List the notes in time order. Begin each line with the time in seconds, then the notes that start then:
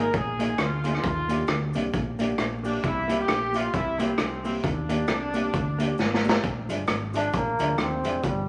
0.00 A#4
0.13 A#1 G#4, kick, closed hi-hat, cabasa
0.39 A#3 D#4 G#4, closed hi-hat, cabasa
0.58 D2 F4, cross-stick, closed hi-hat, cabasa
0.84 A#3 D#4 G#4, closed hi-hat, cabasa
0.95 cross-stick
1.03 D#2 F4, kick, closed hi-hat, cabasa
1.28 A#3 D4 G4, closed hi-hat, cabasa
1.47 D2, cross-stick, closed hi-hat, cabasa
1.74 C2 A#3 D4 G4, closed hi-hat, cabasa
1.93 A#1, kick, closed hi-hat, cabasa
2.19 A#3 D4 G4, closed hi-hat, cabasa
2.38 A#1, cross-stick, closed hi-hat, cabasa
2.63 A#3 D4 G4, open hi-hat, cabasa
2.84 C2 E4, kick, closed hi-hat, cabasa
3.08 A#3 E4 G4, closed hi-hat, cabasa
3.21 G4
3.28 A#1, cross-stick, closed hi-hat, cabasa
3.53 A#3 E4 F4 G4, closed hi-hat, cabasa
3.73 C2 E4, kick, closed hi-hat, cabasa
3.99 A#3 C4 E4 G4, closed hi-hat, cabasa
4.18 C2, muted hollow-body jazz guitar stroke, cross-stick, closed hi-hat, cabasa
4.44 A#3 C4 E4 G4, open hi-hat, cabasa
4.63 D#2 D4, kick, closed hi-hat, cabasa
4.89 A#3 D4 G4, closed hi-hat, cabasa
5.07 C2, cross-stick, closed hi-hat, cabasa
5.34 A#3 D4 G4, closed hi-hat, cabasa
5.53 D2, kick, closed hi-hat, cabasa
5.79 A#3 D4 G4, closed hi-hat, cabasa
5.98 G#1, muted hollow-body jazz guitar stroke, snare, cabasa
6.14 snare
6.23 A#3 D4 G4, cabasa
6.29 snare
6.44 A#1, kick, closed hi-hat, cabasa
6.69 G1 F3 G#3 D4, closed hi-hat, cabasa
6.87 G#1, muted hollow-body jazz guitar stroke, cross-stick, closed hi-hat, cabasa
7.14 F3 G#3 D4, closed hi-hat, cabasa
7.33 A#1 A#3, kick, closed hi-hat, cabasa
7.59 D2 F3 G#3 D4, closed hi-hat, cabasa
7.78 D#2 C4, cross-stick, closed hi-hat, cabasa
8.04 F1 F3 G#3 D4, closed hi-hat, cabasa
8.23 G1 G3, kick, closed hi-hat, cabasa